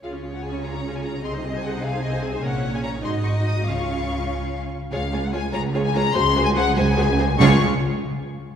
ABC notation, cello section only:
X:1
M:6/8
L:1/8
Q:3/8=98
K:Db
V:1 name="Cello section" clef=bass
D,6 | C,6 | B,,3 A,,3 | D,4- D, z |
D,,3 D,,3 | D,,3 D,,3 | D,, z4 z |]